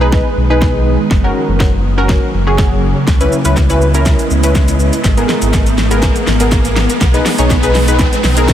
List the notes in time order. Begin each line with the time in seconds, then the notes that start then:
Already playing: B1 D#3 G#3 B3, riser
0.01 D#4 G#4 B4
0.12 kick, snare
0.37 B1
0.50 D#4 G#4 B4
0.62 kick, snare
1.11 F#1 C#3 F#3 A#3, kick, snare
1.24 C#4 F#4 A#4
1.48 F#1
1.60 kick, snare
1.98 C#4 F#4 A#4
2.09 kick, snare
2.34 F#1
2.47 C#4 F#4 G#4
2.58 kick, snare
3.08 C#2 G#3 B3 E4 D#5, kick, snare, shaker
3.20 C#4 E4 B4, closed hi-hat, shaker
3.33 shaker
3.45 C#2 C#4 E4 B4, closed hi-hat, shaker
3.57 kick, snare, shaker
3.69 C#4 E4 B4, closed hi-hat, shaker
3.81 shaker
3.94 C#4 E4 A#4, closed hi-hat, shaker
4.06 kick, snare, shaker
4.19 closed hi-hat, shaker
4.31 C#2, shaker
4.43 C#4 E4 B4, closed hi-hat, shaker
4.55 kick, snare, shaker
4.68 closed hi-hat, shaker
4.80 shaker
4.93 closed hi-hat, shaker
5.04 G#1 A#4, kick, snare, shaker
5.17 B3 G#4 A#4, closed hi-hat, shaker
5.29 snare, shaker
5.42 G#1, closed hi-hat, shaker
5.53 kick, snare, shaker
5.67 closed hi-hat, shaker
5.78 snare, shaker
5.91 B3 G#4 A#4, closed hi-hat, shaker
6.02 kick, snare, shaker
6.16 closed hi-hat, shaker
6.27 G#1, snare, shaker
6.40 B3 G#4 A#4, closed hi-hat, shaker
6.52 kick, snare, shaker
6.65 closed hi-hat, shaker
6.76 snare, shaker
6.90 closed hi-hat, shaker
7.01 B1 D#3, kick, snare, shaker
7.14 D#4 G#4 B4, closed hi-hat, shaker
7.26 snare, open hi-hat, shaker
7.38 B1 D#4 G#4 C#5, closed hi-hat, shaker
7.50 kick, snare, shaker
7.63 D#4 G#4 B4, closed hi-hat, shaker
7.75 snare, open hi-hat, shaker
7.88 D#4 G#4 B4, closed hi-hat, shaker
7.99 kick, snare, shaker
8.13 closed hi-hat, shaker
8.24 B1, snare, open hi-hat, shaker
8.37 D#4 G#4 A#4, closed hi-hat, shaker
8.48 kick, snare, shaker